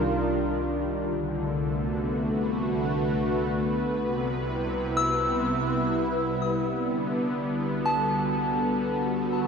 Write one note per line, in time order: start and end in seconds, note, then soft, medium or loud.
0.00 1.08 C2 medium
0.00 1.13 D#3 medium
0.00 1.13 G3 medium
0.00 2.02 D4 medium
0.00 1.13 F4 medium
0.00 1.13 A#4 medium
1.13 3.95 C2 medium
1.13 3.99 D3 medium
1.37 3.99 A3 medium
1.71 9.47 B3 medium
1.71 5.14 F#4 medium
2.26 8.04 B4 medium
3.99 6.83 C2 medium
3.99 6.87 C3 medium
4.21 9.47 G3 medium
4.37 8.03 E4 medium
4.97 9.18 E6 medium
6.87 9.47 C2 medium
6.87 9.47 D3 medium
7.73 9.47 F#4 medium
7.86 9.47 A4 medium
7.86 9.47 A5 medium